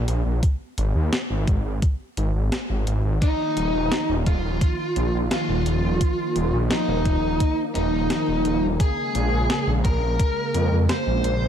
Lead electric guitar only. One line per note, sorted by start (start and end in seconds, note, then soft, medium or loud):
3.22 4.13 D#4 loud
4.26 5.17 F4 medium
5.31 6.57 F4 medium
6.71 7.61 D#4 medium
7.75 8.66 D#4 medium
8.80 9.71 G#4 loud
9.85 10.75 A#4 medium
10.89 11.48 C5 medium